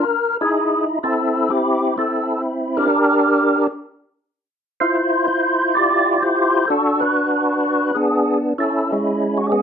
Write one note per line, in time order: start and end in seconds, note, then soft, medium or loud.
0.00 0.37 A#4 loud
0.41 0.99 D#4 medium
0.41 0.99 E4 medium
0.41 0.85 G#4 medium
1.03 1.49 C4 medium
1.03 1.49 E4 medium
1.03 1.52 A4 loud
1.50 1.96 C4 medium
1.50 1.97 E4 medium
1.50 1.94 G4 medium
1.98 2.88 C4 medium
1.98 2.88 E4 medium
1.98 2.42 A4 medium
2.77 3.67 D4 medium
2.77 3.67 G4 medium
2.77 3.67 A#4 loud
4.80 5.27 E4 medium
4.80 5.27 F4 medium
4.80 5.25 C5 medium
5.27 6.18 E4 medium
5.27 5.75 F4 medium
5.27 5.75 C5 medium
5.75 6.21 F4 medium
5.75 6.66 G4 medium
5.75 6.23 D5 loud
6.20 6.66 E4 medium
6.20 6.66 F4 medium
6.20 6.69 C5 medium
6.68 7.01 D4 medium
6.68 7.01 F#4 medium
6.68 7.01 A4 loud
7.00 7.92 D4 medium
7.00 7.91 F#4 medium
7.00 7.97 B4 medium
7.95 8.54 B3 medium
7.95 8.53 D4 soft
7.95 8.38 G#4 medium
8.58 8.91 C#4 medium
8.58 8.92 E4 medium
8.58 8.92 A4 medium
8.92 9.62 G#3 medium
8.92 9.51 C#4 medium
8.92 9.39 E4 medium
9.38 9.47 F#4 medium
9.47 9.51 G4 medium
9.52 9.62 B3 medium
9.52 9.62 C#4 medium
9.52 9.62 G#4 medium